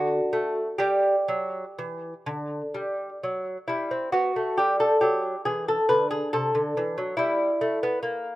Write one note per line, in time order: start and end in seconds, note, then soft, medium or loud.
0.00 0.19 D3 medium
0.00 0.76 F#4 medium
0.33 0.67 A3 medium
0.78 1.15 G3 medium
0.78 3.17 G4 medium
1.28 1.63 F#3 medium
1.79 2.13 E3 medium
2.26 2.61 D3 medium
2.74 3.09 G3 medium
3.23 3.57 F#3 medium
3.68 3.90 G3 medium
3.68 4.12 E4 medium
3.91 4.13 C4 soft
4.12 4.35 B3 medium
4.12 4.57 F#4 medium
4.36 4.58 A3 soft
4.58 4.91 G3 medium
4.58 4.80 G4 medium
4.80 5.00 A4 medium
5.01 5.34 F#3 soft
5.01 5.45 G4 medium
5.45 5.78 E3 medium
5.45 5.68 G#4 medium
5.68 5.88 A4 medium
5.89 6.21 D3 medium
5.89 6.10 B4 medium
6.11 6.33 G#4 medium
6.33 6.54 C3 medium
6.33 7.15 A4 medium
6.55 6.75 D3 medium
6.77 6.97 E3 medium
6.98 7.18 F#3 medium
7.17 7.50 G3 medium
7.17 8.36 E4 medium
7.61 7.82 A3 medium
7.83 8.02 B3 medium
8.03 8.34 A#3 medium